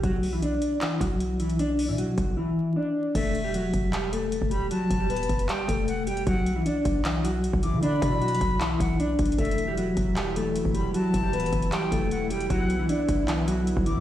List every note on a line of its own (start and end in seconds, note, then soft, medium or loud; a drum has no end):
0.03 0.59 B1 loud
0.03 0.31 F#3 medium
0.03 0.31 F#4 loud
0.03 kick loud
0.03 closed hi-hat medium
0.23 open hi-hat medium
0.33 0.42 E3 medium
0.33 0.41 E4 medium
0.42 0.79 D4 medium
0.42 0.79 D5 medium
0.42 closed hi-hat medium
0.62 closed hi-hat medium
0.81 0.99 E3 medium
0.81 0.99 E4 medium
0.81 clap loud
0.81 closed hi-hat medium
1.01 1.90 B1 loud
1.01 1.38 F#3 medium
1.01 1.37 F#4 medium
1.01 kick medium
1.01 closed hi-hat loud
1.20 closed hi-hat medium
1.40 1.58 E3 medium
1.40 1.57 E4 medium
1.40 closed hi-hat medium
1.49 closed hi-hat soft
1.59 1.87 D4 loud
1.59 1.87 D5 medium
1.59 closed hi-hat medium
1.79 open hi-hat medium
1.88 2.16 B2 loud
1.88 1.98 E3 medium
1.88 1.97 E4 medium
1.98 2.35 F#3 medium
1.98 2.35 F#4 medium
1.98 closed hi-hat medium
2.18 2.36 B1 loud
2.18 kick loud
2.18 closed hi-hat medium
2.37 2.74 E3 medium
2.37 2.74 E4 medium
2.76 3.13 D4 medium
2.76 3.13 D5 medium
3.15 3.71 E1 loud
3.15 3.43 A3 medium
3.15 3.43 A4 loud
3.15 3.52 E5 loud
3.15 kick loud
3.15 closed hi-hat medium
3.15 crash loud
3.35 closed hi-hat medium
3.44 3.53 G3 medium
3.44 3.53 G4 medium
3.54 3.91 F#3 medium
3.54 3.91 F#4 medium
3.54 closed hi-hat medium
3.73 4.39 E1 loud
3.73 kick loud
3.73 closed hi-hat medium
3.93 4.11 G3 medium
3.93 4.10 G4 medium
3.93 clap loud
3.93 closed hi-hat medium
4.13 4.50 A3 medium
4.13 4.49 A4 medium
4.13 closed hi-hat loud
4.32 closed hi-hat medium
4.42 4.70 E1 loud
4.42 kick loud
4.51 4.69 G3 medium
4.51 4.69 G4 medium
4.51 4.70 B5 medium
4.51 closed hi-hat medium
4.71 4.99 F#3 medium
4.71 4.98 F#4 medium
4.71 5.45 A5 loud
4.71 closed hi-hat medium
4.90 5.11 E1 loud
4.90 kick medium
4.90 closed hi-hat medium
5.00 5.09 G3 medium
5.00 5.09 G4 medium
5.10 5.21 D1 medium
5.10 5.47 B3 medium
5.10 5.47 B4 medium
5.10 closed hi-hat medium
5.16 5.29 E1 loud
5.16 closed hi-hat medium
5.23 closed hi-hat medium
5.29 5.48 E1 loud
5.29 kick loud
5.29 closed hi-hat medium
5.39 closed hi-hat medium
5.49 5.67 G3 medium
5.49 5.66 G4 medium
5.49 5.85 G5 medium
5.49 clap loud
5.49 closed hi-hat medium
5.68 6.24 E1 loud
5.68 6.05 A3 medium
5.68 6.05 A4 medium
5.68 kick loud
5.68 closed hi-hat loud
5.88 6.06 F#5 medium
5.88 closed hi-hat medium
6.07 6.25 G3 medium
6.07 6.25 G4 medium
6.07 6.26 G5 medium
6.07 closed hi-hat medium
6.07 open hi-hat medium
6.17 closed hi-hat soft
6.26 6.64 B1 loud
6.26 6.55 F#3 medium
6.26 6.54 F#4 loud
6.26 6.63 F#5 loud
6.26 kick loud
6.26 closed hi-hat medium
6.46 closed hi-hat medium
6.56 6.65 E3 medium
6.56 6.65 E4 medium
6.66 7.02 D4 medium
6.66 7.03 D5 medium
6.66 closed hi-hat medium
6.85 7.51 B1 loud
6.85 kick loud
6.85 closed hi-hat medium
7.05 7.22 E3 medium
7.05 7.22 E4 medium
7.05 clap loud
7.05 closed hi-hat medium
7.24 7.61 F#3 medium
7.24 7.61 F#4 medium
7.24 closed hi-hat loud
7.44 closed hi-hat medium
7.53 7.74 B1 loud
7.53 kick loud
7.63 7.81 E3 medium
7.63 7.81 E4 medium
7.63 7.82 D6 medium
7.63 closed hi-hat medium
7.73 8.01 D3 loud
7.82 8.10 D4 loud
7.82 8.11 D5 medium
7.82 8.76 B5 loud
7.82 closed hi-hat medium
8.02 8.39 B2 loud
8.02 kick medium
8.02 closed hi-hat medium
8.12 8.21 E3 medium
8.12 8.20 E4 medium
8.21 8.59 F#3 medium
8.21 8.58 F#4 medium
8.21 closed hi-hat soft
8.28 closed hi-hat medium
8.35 closed hi-hat medium
8.41 8.78 B1 loud
8.41 kick loud
8.41 closed hi-hat medium
8.60 8.97 E3 medium
8.60 8.97 E4 medium
8.60 clap loud
8.60 closed hi-hat medium
8.80 9.17 B1 loud
8.80 8.99 F#5 medium
8.80 kick medium
8.80 closed hi-hat loud
9.00 9.36 D4 medium
9.00 9.37 D5 medium
9.00 closed hi-hat medium
9.19 9.38 B1 loud
9.19 kick loud
9.19 closed hi-hat medium
9.19 open hi-hat medium
9.25 closed hi-hat medium
9.32 closed hi-hat medium
9.38 9.95 E1 loud
9.38 12.47 E3 medium
9.38 12.47 F#3 medium
9.38 9.66 A3 medium
9.38 14.00 E4 medium
9.38 9.66 A4 loud
9.38 9.75 E5 loud
9.38 kick loud
9.38 closed hi-hat medium
9.45 closed hi-hat medium
9.51 closed hi-hat medium
9.58 closed hi-hat medium
9.68 9.77 G3 medium
9.68 9.76 G4 medium
9.78 10.15 F#3 medium
9.78 10.14 F#4 medium
9.78 closed hi-hat medium
9.97 10.62 E1 loud
9.97 kick loud
9.97 closed hi-hat medium
10.16 10.34 G3 medium
10.16 10.34 G4 medium
10.16 clap loud
10.16 closed hi-hat medium
10.36 10.73 A3 medium
10.36 10.73 A4 medium
10.36 closed hi-hat loud
10.56 closed hi-hat medium
10.65 10.93 E1 loud
10.65 kick loud
10.74 10.93 G3 medium
10.74 10.92 G4 medium
10.74 10.93 B5 medium
10.74 closed hi-hat medium
10.94 11.22 F#3 medium
10.94 11.22 F#4 medium
10.94 11.68 A5 loud
10.94 closed hi-hat medium
11.14 11.35 E1 loud
11.14 kick medium
11.14 closed hi-hat medium
11.23 11.33 G3 medium
11.23 11.32 G4 medium
11.33 11.45 D1 loud
11.33 11.70 B3 medium
11.33 11.70 B4 medium
11.33 closed hi-hat medium
11.40 11.52 E1 loud
11.40 closed hi-hat medium
11.46 closed hi-hat medium
11.53 11.71 E1 loud
11.53 kick loud
11.53 closed hi-hat medium
11.62 closed hi-hat medium
11.72 11.90 G3 medium
11.72 11.90 G4 medium
11.72 12.09 G5 medium
11.72 clap loud
11.72 closed hi-hat medium
11.92 12.48 E1 loud
11.92 12.29 A3 medium
11.92 12.28 A4 medium
11.92 kick medium
11.92 closed hi-hat loud
12.11 12.30 F#5 loud
12.11 closed hi-hat medium
12.30 12.48 G3 medium
12.30 12.48 G4 medium
12.30 12.49 G5 medium
12.30 closed hi-hat medium
12.30 open hi-hat medium
12.40 closed hi-hat soft
12.50 12.88 B1 loud
12.50 14.00 D3 medium
12.50 12.78 F#3 medium
12.50 14.00 B3 medium
12.50 12.77 F#4 loud
12.50 12.87 F#5 loud
12.50 kick loud
12.50 closed hi-hat medium
12.70 closed hi-hat medium
12.79 12.88 E3 medium
12.79 12.88 E4 medium
12.89 13.26 D4 medium
12.89 13.26 D5 medium
12.89 closed hi-hat medium
13.09 13.74 B1 loud
13.09 kick loud
13.09 closed hi-hat medium
13.28 13.46 E3 medium
13.28 13.45 E4 medium
13.28 clap loud
13.28 closed hi-hat medium
13.47 13.85 F#3 medium
13.47 13.84 F#4 medium
13.47 closed hi-hat loud
13.67 closed hi-hat medium
13.77 13.98 B1 loud
13.77 kick loud
13.86 14.00 E3 medium
13.86 14.00 E4 medium
13.86 14.00 D6 medium
13.86 closed hi-hat medium
13.96 14.00 D3 loud